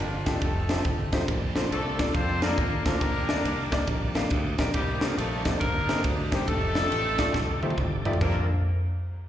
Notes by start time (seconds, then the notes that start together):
Already playing: D4
0.00 G1 F3 F4, ride
0.26 A3 C4 D4 D#4 F4 G4 A4, kick, snare, ride
0.41 F1, kick, ride
0.69 A3 D#4 F4 G4 C5, snare, ride
0.85 G1, kick, ride
1.12 A1 A3 D#4 F4 G4 C5, kick, snare, ride
1.28 A#1 A#2 A#3 D5 A5 C6, kick, ride
1.55 A#3 D4 F4 A4 C5, snare, ride
1.71 C2 A3 C4 D4 A4, ride
1.98 A#3 D4 F4 A4 D5, kick, snare, ride
2.14 F2 C4 F4 A4 C5, kick, ride
2.42 A#3 D4 F4 A4 A#4 D5, snare, ride
2.57 D#2, kick, ride
2.85 D2 A#3 D4 F4 G4 A4 A#4 C5, kick, snare, ride
3.01 D#2 D#3 D5 G5 D6, kick, ride
3.29 A#3 D4 D#4 G4 D5, snare, ride
3.44 C2, ride
3.72 A#3 D4 D#4 G4 D5, kick, snare, ride
3.87 A#1, kick, ride
4.15 A#3 D4 D#4 G4 F5, snare, ride
4.30 D2, kick, ride
4.58 A#1 A#3 D4 D#4 G4 A#4, kick, snare, ride
4.74 C2 C3 G3 A#3 D#4 G4 C5 A#5 D6, kick, ride
5.01 F3 A#3 D4 D#4 F4 G4 C5, snare, ride
5.17 A#1 A3 A4, ride
5.45 A3 A#3 D4 D#4 G4 A4 C5, kick, snare, ride
5.61 G1 A#3 D4 D#4 A#4, kick, ride
5.89 A#3 D4 D#4 G4 C5, snare, ride
6.04 D2, kick, ride
6.32 C2 G3 A#3 D4 D#4 G4 C5, kick, snare, ride
6.48 F1 A3 C4 D#4 A4 G5, kick, ride
6.75 A3 D#4 F4 G4 D5, snare, ride
6.91 A1, ride
7.18 A3 D#4 F4 G4 D5, kick, snare, ride
7.34 C2, kick, snare
7.62 A3 D#4 F4 G4 C5, high tom
7.70 high tom
7.78 G1, kick, mid tom
8.05 A1 A3 D#4 F4 G4 D5, floor tom
8.13 floor tom
8.21 A#1 A#3 C4 D4 A4 A#4 C5 D5, kick, floor tom, crash